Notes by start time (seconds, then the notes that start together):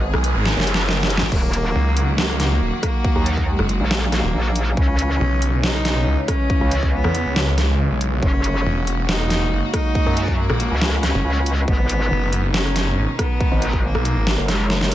Already playing: G#1 D#3 G#3 B3 G#4, noise sweep
0.14 B1, cross-stick
0.24 closed hi-hat
0.35 G#1
0.46 snare
0.57 F#1, snare
0.67 closed hi-hat
0.74 snare
0.89 snare
1.03 snare
1.10 closed hi-hat
1.17 snare
1.22 G#1
1.32 D#1 F#3 A#3 F#4, kick, crash
1.53 closed hi-hat
1.75 C#2
1.97 closed hi-hat
2.18 A#3, snare
2.29 cross-stick
2.40 snare, closed hi-hat
2.61 D#1
2.83 A#3, kick, cross-stick, closed hi-hat
3.04 kick
3.16 D#2
3.26 closed hi-hat
3.37 kick
3.48 G#3
3.59 F#1, cross-stick
3.69 closed hi-hat
3.80 A#1
3.91 snare
4.02 cross-stick
4.12 A#3, cross-stick, snare, closed hi-hat
4.24 D#1
4.34 A#1
4.56 closed hi-hat
4.77 C#2 C#3 E3 G#3 C#4, kick
4.99 closed hi-hat
5.20 B1
5.42 closed hi-hat
5.63 D#4, snare
5.75 cross-stick
5.85 snare, closed hi-hat
6.07 C#2
6.28 C#4, kick, cross-stick, closed hi-hat
6.50 kick
6.61 C#2
6.71 closed hi-hat
6.83 kick
6.93 B3
7.04 E2, cross-stick
7.15 closed hi-hat
7.26 C#2
7.36 snare
7.47 cross-stick
7.58 G#3, cross-stick, snare, closed hi-hat
7.91 B1
8.01 closed hi-hat
8.22 F#1 A#3 C#4 F#4, kick
8.44 closed hi-hat
8.66 E1
8.87 closed hi-hat
9.09 D#4, snare
9.20 cross-stick
9.30 snare, closed hi-hat
9.52 F#1
9.74 D#4, kick, cross-stick, closed hi-hat
9.95 kick
10.06 F#2
10.17 closed hi-hat
10.28 kick
10.38 A#3
10.50 A#1, cross-stick
10.60 closed hi-hat
10.71 C#2
10.81 snare
10.93 cross-stick
11.03 C#4, cross-stick, snare, closed hi-hat
11.14 F#1
11.25 C#2
11.46 closed hi-hat
11.68 G#1 B2 D#3 B3 D#4, kick
11.89 closed hi-hat
12.11 F#1
12.33 closed hi-hat
12.54 C#4, snare
12.65 cross-stick
12.76 snare, closed hi-hat
12.97 G#1
13.19 B3, kick, cross-stick, closed hi-hat
13.41 kick
13.52 G#1
13.62 closed hi-hat
13.73 kick
13.84 A#3
13.95 B1, cross-stick
14.05 closed hi-hat
14.16 G#1
14.27 snare
14.38 F#1, cross-stick
14.48 G#3, cross-stick, snare, closed hi-hat
14.70 snare
14.81 snare
14.92 closed hi-hat